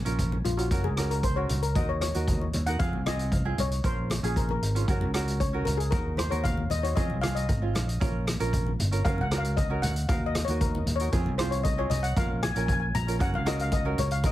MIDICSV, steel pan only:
0, 0, Header, 1, 2, 480
1, 0, Start_track
1, 0, Key_signature, -5, "minor"
1, 0, Tempo, 520382
1, 1618, Time_signature, 4, 2, 24, 8
1, 13208, End_track
2, 0, Start_track
2, 0, Title_t, "Steel pan"
2, 0, Program_c, 0, 114
2, 412, Note_on_c, 0, 65, 73
2, 526, Note_off_c, 0, 65, 0
2, 530, Note_on_c, 0, 66, 68
2, 776, Note_on_c, 0, 68, 74
2, 781, Note_off_c, 0, 66, 0
2, 1020, Note_on_c, 0, 70, 75
2, 1024, Note_off_c, 0, 68, 0
2, 1142, Note_off_c, 0, 70, 0
2, 1142, Note_on_c, 0, 72, 81
2, 1255, Note_on_c, 0, 73, 81
2, 1264, Note_off_c, 0, 72, 0
2, 1364, Note_off_c, 0, 73, 0
2, 1499, Note_on_c, 0, 70, 82
2, 1622, Note_off_c, 0, 70, 0
2, 1624, Note_on_c, 0, 75, 86
2, 1743, Note_on_c, 0, 73, 86
2, 1745, Note_off_c, 0, 75, 0
2, 1846, Note_off_c, 0, 73, 0
2, 1857, Note_on_c, 0, 73, 89
2, 2458, Note_on_c, 0, 78, 88
2, 2477, Note_off_c, 0, 73, 0
2, 2571, Note_off_c, 0, 78, 0
2, 2577, Note_on_c, 0, 77, 97
2, 2826, Note_off_c, 0, 77, 0
2, 2827, Note_on_c, 0, 75, 95
2, 3319, Note_off_c, 0, 75, 0
2, 3320, Note_on_c, 0, 73, 88
2, 3535, Note_off_c, 0, 73, 0
2, 3554, Note_on_c, 0, 72, 89
2, 3884, Note_off_c, 0, 72, 0
2, 3920, Note_on_c, 0, 68, 72
2, 4031, Note_on_c, 0, 70, 82
2, 4035, Note_off_c, 0, 68, 0
2, 4139, Note_off_c, 0, 70, 0
2, 4157, Note_on_c, 0, 70, 75
2, 4597, Note_off_c, 0, 70, 0
2, 4983, Note_on_c, 0, 73, 83
2, 5207, Note_off_c, 0, 73, 0
2, 5213, Note_on_c, 0, 70, 87
2, 5326, Note_on_c, 0, 68, 80
2, 5343, Note_off_c, 0, 70, 0
2, 5449, Note_on_c, 0, 70, 87
2, 5459, Note_off_c, 0, 68, 0
2, 5701, Note_on_c, 0, 72, 83
2, 5704, Note_off_c, 0, 70, 0
2, 5815, Note_off_c, 0, 72, 0
2, 5816, Note_on_c, 0, 73, 87
2, 5937, Note_on_c, 0, 77, 99
2, 5944, Note_off_c, 0, 73, 0
2, 6187, Note_on_c, 0, 75, 96
2, 6188, Note_off_c, 0, 77, 0
2, 6241, Note_off_c, 0, 75, 0
2, 6303, Note_on_c, 0, 73, 87
2, 6357, Note_off_c, 0, 73, 0
2, 6416, Note_on_c, 0, 75, 86
2, 6655, Note_on_c, 0, 77, 93
2, 6668, Note_off_c, 0, 75, 0
2, 6780, Note_on_c, 0, 75, 81
2, 6784, Note_off_c, 0, 77, 0
2, 7946, Note_off_c, 0, 75, 0
2, 8344, Note_on_c, 0, 77, 86
2, 8496, Note_on_c, 0, 78, 83
2, 8510, Note_off_c, 0, 77, 0
2, 8654, Note_on_c, 0, 77, 83
2, 8666, Note_off_c, 0, 78, 0
2, 8825, Note_off_c, 0, 77, 0
2, 8825, Note_on_c, 0, 75, 83
2, 9048, Note_off_c, 0, 75, 0
2, 9060, Note_on_c, 0, 78, 82
2, 9304, Note_on_c, 0, 77, 90
2, 9309, Note_off_c, 0, 78, 0
2, 9466, Note_on_c, 0, 75, 82
2, 9469, Note_off_c, 0, 77, 0
2, 9614, Note_off_c, 0, 75, 0
2, 9636, Note_on_c, 0, 73, 78
2, 9787, Note_on_c, 0, 70, 81
2, 9795, Note_off_c, 0, 73, 0
2, 10107, Note_on_c, 0, 73, 84
2, 10115, Note_off_c, 0, 70, 0
2, 10329, Note_off_c, 0, 73, 0
2, 10498, Note_on_c, 0, 72, 85
2, 10617, Note_on_c, 0, 73, 81
2, 10624, Note_off_c, 0, 72, 0
2, 10732, Note_on_c, 0, 75, 87
2, 10743, Note_off_c, 0, 73, 0
2, 10861, Note_off_c, 0, 75, 0
2, 10872, Note_on_c, 0, 73, 86
2, 10975, Note_on_c, 0, 75, 92
2, 10990, Note_off_c, 0, 73, 0
2, 11031, Note_off_c, 0, 75, 0
2, 11096, Note_on_c, 0, 78, 95
2, 11222, Note_off_c, 0, 78, 0
2, 11231, Note_on_c, 0, 77, 97
2, 11450, Note_off_c, 0, 77, 0
2, 11463, Note_on_c, 0, 80, 96
2, 11524, Note_off_c, 0, 80, 0
2, 11535, Note_on_c, 0, 80, 68
2, 11593, Note_off_c, 0, 80, 0
2, 11604, Note_on_c, 0, 80, 84
2, 11668, Note_off_c, 0, 80, 0
2, 11679, Note_on_c, 0, 80, 72
2, 11727, Note_off_c, 0, 80, 0
2, 11738, Note_on_c, 0, 80, 90
2, 11795, Note_off_c, 0, 80, 0
2, 11806, Note_on_c, 0, 80, 71
2, 11877, Note_off_c, 0, 80, 0
2, 11943, Note_on_c, 0, 82, 107
2, 12164, Note_off_c, 0, 82, 0
2, 12185, Note_on_c, 0, 78, 95
2, 12238, Note_off_c, 0, 78, 0
2, 12316, Note_on_c, 0, 77, 91
2, 12430, Note_off_c, 0, 77, 0
2, 12430, Note_on_c, 0, 75, 92
2, 12548, Note_off_c, 0, 75, 0
2, 12554, Note_on_c, 0, 77, 89
2, 12658, Note_off_c, 0, 77, 0
2, 12663, Note_on_c, 0, 75, 92
2, 12883, Note_off_c, 0, 75, 0
2, 12907, Note_on_c, 0, 73, 86
2, 13022, Note_on_c, 0, 77, 90
2, 13026, Note_off_c, 0, 73, 0
2, 13143, Note_off_c, 0, 77, 0
2, 13154, Note_on_c, 0, 75, 96
2, 13204, Note_off_c, 0, 75, 0
2, 13208, End_track
0, 0, End_of_file